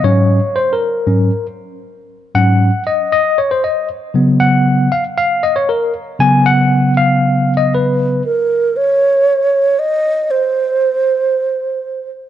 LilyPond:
<<
  \new Staff \with { instrumentName = "Alto flute" } { \time 4/4 \key des \major \tempo 4 = 117 r1 | r1 | r1 | r1 |
bes'4 des''2 ees''4 | c''2.~ c''8 r8 | }
  \new Staff \with { instrumentName = "Tine electric piano" } { \time 4/4 \key des \major des''4 \tuplet 3/2 { c''8 bes'4~ } bes'8. r4 r16 | r8 ges''4 ees''8 ees''8 des''16 c''16 ees''8 r8 | r8 ges''4 f''8 f''8 ees''16 des''16 bes'8 r8 | aes''8 ges''4 f''8~ \tuplet 3/2 { f''4 ees''8 } ces''4 |
r1 | r1 | }
  \new Staff \with { instrumentName = "Tine electric piano" } { \clef bass \time 4/4 \key des \major <aes, ges des'>8 r4. <aes, ges des'>8 r4. | r8 <aes, ges des'>8 r2. | <des ges ces'>4. r2 r8 | <des ges ces'>1 |
r1 | r1 | }
>>